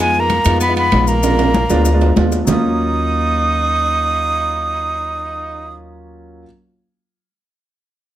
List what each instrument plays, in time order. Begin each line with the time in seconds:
Already playing: upright bass F2
0.00 tenor saxophone G#3, grand piano G#3 B3 D#4 F4, flute G#5
0.14 high conga, maracas
0.20 tenor saxophone A#3, flute A#5
0.30 high conga, high timbale, low timbale, maracas
0.44 upright bass F2, grand piano G#3 B3 D#4 F4, high conga, high timbale, maracas
0.60 tenor saxophone B3, flute B5, high conga, maracas
0.68 grand piano G#3 B3 D#4 F4
0.76 tenor saxophone B3, flute B5, high conga, high timbale, maracas
0.91 upright bass A#1, grand piano G#3 B3 D#4 F4, high conga, high timbale, low timbale, maracas
1.07 tenor saxophone A#3, flute A#5, maracas
1.23 grand piano B2 G#3 D4 F4, high conga, high timbale, maracas
1.39 high conga, high timbale, maracas
1.54 high conga, maracas
1.69 upright bass D2, grand piano G#3 B3 D4 F4, high conga, low timbale, maracas
1.85 high conga, low timbale, maracas
1.93 grand piano G#3 B3 D4 F4
2.01 high conga, low timbale, maracas
2.16 upright bass D#2, grand piano G#3 B3 D4 F4, high conga, low timbale, maracas
2.32 high conga, low timbale, maracas
2.45 upright bass D#2, grand piano F#3 A#3, tenor saxophone D#4, flute D#6, low conga, low timbale, maracas
2.49 grand piano C#4 F4